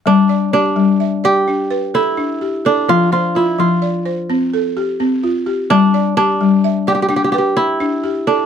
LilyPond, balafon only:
<<
  \new Staff \with { instrumentName = "Balafon" } { \time 12/8 \key g \mixolydian \tempo 4. = 85 r8 d''8 g'4 e''8 d''4 b'8 a'4 g'8 a'8~ | a'8 c''8 f'4 d''8 c''4 a'8 g'4 f'8 g'8~ | g'8 d''8 g'4 e''8 d''4 b'4. g'8 a'8 | }
  \new Staff \with { instrumentName = "Balafon" } { \time 12/8 \key g \mixolydian g4 r8 g4 r8 d'4 r8 d'4 r8 | f4 r8 f4 r8 c'4 r8 c'4 r8 | g4 r8 g4 r8 d'4 r8 d'4 r8 | }
>>